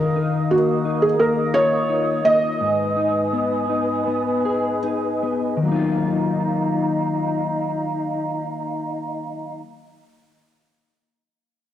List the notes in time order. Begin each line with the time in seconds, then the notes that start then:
Already playing: D#3 F4 A#4 D#5 F5 D#6
0.16 D#4
0.50 A#3 F#4
0.85 D#4
1.02 G#4
1.19 A#3 A#4
1.54 F4 C#5
1.89 D#4
2.25 A#3 D#5
2.60 G#2 B4 G#5
2.96 D#4
3.33 B3
3.69 D#4
4.07 B3
4.45 G#4
4.83 D#4
5.23 B3
5.57 D#3
5.62 F#3 D#4 D#5 F5 A#5
5.67 A#3
5.71 D#4 F4